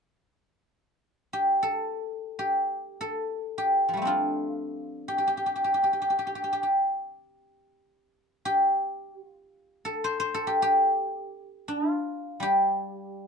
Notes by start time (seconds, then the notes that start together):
1.33 G4
1.63 A4
2.39 G4
3.01 A4
3.58 G4
3.89 F3
3.93 G3 A3
4.02 C4 D4
4.07 F4
5.08 G4
5.18 G4
5.27 G4
5.37 G4
5.46 G4
5.56 G4
5.64 G4
5.74 G4
5.84 G4
5.93 G4
6.02 G4
6.10 G4
6.19 G4
6.27 G4
6.35 G4
6.44 G4
6.53 G4
6.63 G4
8.45 G4
9.14 F#4
9.31 F4
9.85 A4
10.04 C5
10.20 C5
10.34 A4
10.47 G4
10.62 G4
11.68 D4
11.90 F4
12.40 G3 G4